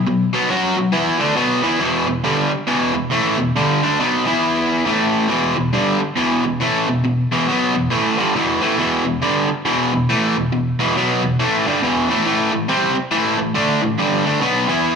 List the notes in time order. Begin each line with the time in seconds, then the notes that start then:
0.07 B2 F#3
0.33 B2 F#3 B3
0.50 F#3 C#4 F#4
0.77 B2 F#3
0.92 E3 B3 E4
1.19 D3 A3 D4
1.36 B2 F#3 B3
1.63 E3 B3 E4
1.80 E2 B2 E3
2.08 E2 B2
2.24 G2 D3 G3
2.51 muted overdriven electric guitar stroke
2.67 E2 B2 E3
2.94 E2 B2
3.11 A2 E3 A3
3.38 E2 B2
3.56 G2 D3 G3
3.83 D3 A3 D4
4.00 B2 F#3 B3
4.26 E3 B3 E4
4.85 A2 E3 A3
5.28 E2 B2 E3
5.56 E2 B2
5.73 G2 D3 G3
6.01 muted overdriven electric guitar stroke
6.16 E2 B2 E3
6.44 E2 B2
6.60 A2 E3 A3
6.88 E2 B2
7.04 E2 B2
7.32 E2 B2 E3
7.48 B2 F#3 B3
7.74 E2 B2
7.90 A2 E3 A3
8.18 G2 D3 G3
8.34 E2 B2 E3
8.61 A2 E3 A3
8.77 E2 B2 E3
9.05 E2 B2
9.22 G2 D3 G3
9.49 muted overdriven electric guitar stroke
9.65 E2 B2 E3
9.93 E2 B2
10.09 A2 E3 A3
10.37 E2 B2
10.52 E2 B2
10.79 E2 B2 E3
10.96 B2 F#3 B3
11.23 E2 B2
11.40 A2 E3 A3
11.66 G2 D3 G3
11.82 E2 B2 E3
12.09 A2 E3 A3
12.25 A2 E3 A3
12.52 A2 E3
12.68 C3 G3 C4
12.95 muted overdriven electric guitar stroke
13.11 A2 E3 A3
13.38 A2 E3
13.55 D3 A3 D4
13.83 A2 E3
13.99 G2 D3 G3
14.25 D3 A3 D4
14.41 B2 F#3 B3
14.69 E3 B3 E4